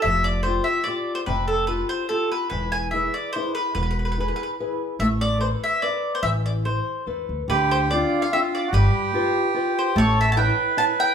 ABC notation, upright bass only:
X:1
M:3/4
L:1/8
Q:"Swing" 1/4=146
K:Am
V:1 name="Upright bass" clef=bass
F,,,4 z2 | F,,,4 z2 | E,,,4 z2 | E,,,4 z2 |
A,,,4 z2 | A,,,4 E,, D,, | D,,4 z2 | G,,, z4 z |
A,,,4 z2 |]